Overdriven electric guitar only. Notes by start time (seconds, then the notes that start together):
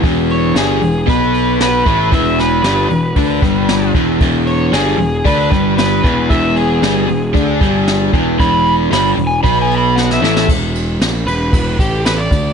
0.03 E2 E3
0.55 G2 G3
0.82 E2
1.07 B2 B3
1.85 A2 A3
2.11 E2 E3
2.64 G2 G3
2.91 E2
3.16 D3 D4
3.42 G2 G3
3.94 E2 E3
4.21 E2 E3
4.73 G2 G3
4.98 E2
5.25 D3 D4
5.50 G2 G3
6.03 E2 E3
6.30 E2 E3
6.82 G2 G3
7.07 E2
7.34 D3 D4
7.60 G2 G3
8.13 E2 E3
8.38 E2 E3
8.91 G2 G3
9.17 E2
9.43 B2 B3
10.22 A2 A3